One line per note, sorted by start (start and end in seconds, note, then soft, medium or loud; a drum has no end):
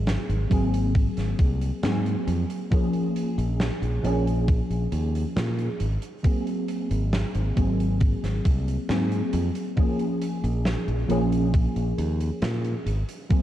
0.00 0.16 G#1 loud
0.00 0.45 F#3 medium
0.00 0.46 A#3 medium
0.00 0.46 C4 medium
0.00 0.47 G#4 medium
0.07 snare loud
0.07 closed hi-hat medium
0.29 0.45 G#1 loud
0.29 closed hi-hat soft
0.50 1.07 G#1 loud
0.50 1.78 F#3 medium
0.50 1.78 A#3 medium
0.50 1.79 C4 medium
0.50 1.79 G#4 medium
0.50 kick medium
0.50 closed hi-hat medium
0.74 closed hi-hat medium
0.95 kick loud
0.95 closed hi-hat medium
1.17 1.33 G#1 medium
1.17 snare soft
1.17 closed hi-hat medium
1.39 1.71 C2 medium
1.39 kick loud
1.39 closed hi-hat medium
1.62 closed hi-hat medium
1.83 2.15 G#2 medium
1.83 2.66 F#3 medium
1.83 2.66 A#3 medium
1.83 2.67 C4 medium
1.83 2.67 G#4 medium
1.83 snare loud
1.83 closed hi-hat medium
2.06 closed hi-hat soft
2.27 2.43 F2 medium
2.27 closed hi-hat medium
2.50 closed hi-hat medium
2.71 3.98 F3 loud
2.71 3.99 A#3 medium
2.71 3.99 C#4 medium
2.71 4.00 G#4 loud
2.71 kick loud
2.71 closed hi-hat medium
2.93 closed hi-hat medium
3.16 closed hi-hat medium
3.38 3.69 A#1 medium
3.38 closed hi-hat medium
3.60 snare loud
3.60 closed hi-hat medium
3.82 3.98 A#1 medium
3.82 closed hi-hat soft
4.03 4.60 A#1 medium
4.03 5.77 F3 medium
4.03 5.78 A#3 medium
4.03 5.78 C#4 medium
4.03 5.79 G#4 loud
4.03 closed hi-hat medium
4.27 closed hi-hat medium
4.48 kick loud
4.48 closed hi-hat medium
4.70 4.86 A#1 medium
4.70 closed hi-hat soft
4.92 5.23 D#2 medium
4.92 closed hi-hat medium
5.15 closed hi-hat medium
5.36 5.68 A#2 medium
5.36 snare loud
5.36 closed hi-hat medium
5.59 closed hi-hat soft
5.80 5.96 G#1 medium
5.80 closed hi-hat medium
6.02 closed hi-hat medium
6.23 7.51 F#3 medium
6.23 7.51 A#3 medium
6.23 7.52 C4 medium
6.23 7.53 G#4 medium
6.23 kick loud
6.23 closed hi-hat medium
6.47 closed hi-hat medium
6.69 closed hi-hat medium
6.91 7.22 G#1 loud
6.91 closed hi-hat medium
7.13 snare loud
7.13 closed hi-hat medium
7.35 7.51 G#1 medium
7.35 closed hi-hat medium
7.56 8.13 G#1 medium
7.56 8.83 F#3 medium
7.56 8.84 A#3 medium
7.56 8.84 C4 medium
7.56 8.85 G#4 medium
7.56 kick medium
7.56 closed hi-hat medium
7.80 closed hi-hat medium
8.00 kick loud
8.00 closed hi-hat medium
8.23 8.39 G#1 medium
8.23 snare soft
8.23 closed hi-hat medium
8.45 8.76 C2 medium
8.45 kick medium
8.45 closed hi-hat medium
8.68 closed hi-hat medium
8.89 9.21 G#2 medium
8.89 9.72 F#3 medium
8.89 9.72 A#3 medium
8.89 9.73 C4 medium
8.89 9.73 G#4 medium
8.89 snare loud
8.89 closed hi-hat medium
9.12 closed hi-hat medium
9.33 9.49 F2 medium
9.33 closed hi-hat medium
9.55 closed hi-hat medium
9.76 11.04 F3 medium
9.76 11.04 A#3 medium
9.76 11.05 C#4 medium
9.76 11.06 G#4 loud
9.76 kick loud
9.76 closed hi-hat medium
9.99 closed hi-hat medium
10.22 closed hi-hat medium
10.44 10.75 A#1 loud
10.44 closed hi-hat medium
10.65 snare loud
10.65 closed hi-hat medium
10.88 11.03 A#1 medium
10.88 closed hi-hat soft
11.08 11.66 A#1 loud
11.08 12.83 F3 medium
11.08 12.83 A#3 medium
11.08 12.84 C#4 medium
11.08 12.84 G#4 loud
11.08 closed hi-hat medium
11.32 closed hi-hat medium
11.54 kick loud
11.54 closed hi-hat medium
11.76 11.92 A#1 medium
11.76 closed hi-hat medium
11.98 12.29 D#2 medium
11.98 closed hi-hat medium
12.20 closed hi-hat medium
12.42 12.73 A#2 medium
12.42 snare loud
12.42 closed hi-hat medium
12.64 closed hi-hat soft
12.86 13.02 G#1 medium
12.86 closed hi-hat medium
13.09 closed hi-hat medium
13.29 13.42 F#3 medium
13.29 13.42 A#3 medium
13.29 13.42 C4 medium
13.29 13.42 G#4 medium
13.29 kick loud
13.29 closed hi-hat medium